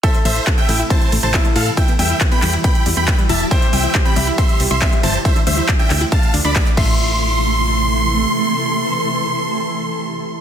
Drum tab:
CC |----------------|----------------|----------------|--------------x-|
RD |x-x-x-x-x-x-x-x-|x-x-x-x-x-x-x-x-|x-x-x-x-x-x-x-x-|x-x-x-x-x-x-x---|
HH |xxoxxxoxxxoxxxox|xxoxxxoxxxoxxxox|xxoxxxoxxxoxxxox|xxoxxxoxxxoxxx--|
CP |----x-------x---|----x-x-----x---|----x-------x---|----x-x-----x---|
BD |o---o---o---o---|o---o---o---o---|o---o---o---o---|o---o---o---o-o-|

CC |----------------|----------------|
RD |----------------|----------------|
HH |----------------|----------------|
CP |----------------|----------------|
BD |----------------|----------------|